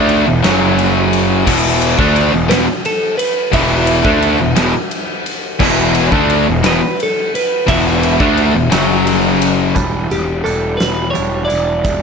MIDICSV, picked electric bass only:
0, 0, Header, 1, 2, 480
1, 0, Start_track
1, 0, Tempo, 691244
1, 1020, Time_signature, 6, 3, 24, 8
1, 8348, End_track
2, 0, Start_track
2, 0, Title_t, "Picked electric bass"
2, 0, Program_c, 0, 34
2, 0, Note_on_c, 0, 38, 98
2, 170, Note_off_c, 0, 38, 0
2, 191, Note_on_c, 0, 28, 81
2, 299, Note_off_c, 0, 28, 0
2, 313, Note_on_c, 0, 30, 96
2, 997, Note_off_c, 0, 30, 0
2, 1022, Note_on_c, 0, 28, 99
2, 1354, Note_off_c, 0, 28, 0
2, 1380, Note_on_c, 0, 38, 97
2, 1602, Note_off_c, 0, 38, 0
2, 1622, Note_on_c, 0, 28, 88
2, 1731, Note_off_c, 0, 28, 0
2, 1747, Note_on_c, 0, 28, 106
2, 1853, Note_off_c, 0, 28, 0
2, 2458, Note_on_c, 0, 28, 99
2, 2790, Note_off_c, 0, 28, 0
2, 2812, Note_on_c, 0, 38, 101
2, 3035, Note_off_c, 0, 38, 0
2, 3056, Note_on_c, 0, 28, 90
2, 3165, Note_off_c, 0, 28, 0
2, 3168, Note_on_c, 0, 28, 102
2, 3281, Note_off_c, 0, 28, 0
2, 3893, Note_on_c, 0, 28, 107
2, 4226, Note_off_c, 0, 28, 0
2, 4254, Note_on_c, 0, 38, 101
2, 4474, Note_off_c, 0, 38, 0
2, 4501, Note_on_c, 0, 28, 86
2, 4606, Note_off_c, 0, 28, 0
2, 4615, Note_on_c, 0, 28, 107
2, 4723, Note_off_c, 0, 28, 0
2, 5341, Note_on_c, 0, 28, 101
2, 5670, Note_off_c, 0, 28, 0
2, 5699, Note_on_c, 0, 38, 94
2, 5917, Note_off_c, 0, 38, 0
2, 5931, Note_on_c, 0, 28, 78
2, 6041, Note_off_c, 0, 28, 0
2, 6063, Note_on_c, 0, 30, 104
2, 6750, Note_off_c, 0, 30, 0
2, 6778, Note_on_c, 0, 28, 91
2, 6988, Note_off_c, 0, 28, 0
2, 7022, Note_on_c, 0, 28, 85
2, 7231, Note_off_c, 0, 28, 0
2, 7268, Note_on_c, 0, 28, 80
2, 7475, Note_off_c, 0, 28, 0
2, 7509, Note_on_c, 0, 28, 81
2, 7716, Note_off_c, 0, 28, 0
2, 7764, Note_on_c, 0, 28, 74
2, 7965, Note_off_c, 0, 28, 0
2, 7998, Note_on_c, 0, 28, 87
2, 8203, Note_off_c, 0, 28, 0
2, 8225, Note_on_c, 0, 28, 93
2, 8348, Note_off_c, 0, 28, 0
2, 8348, End_track
0, 0, End_of_file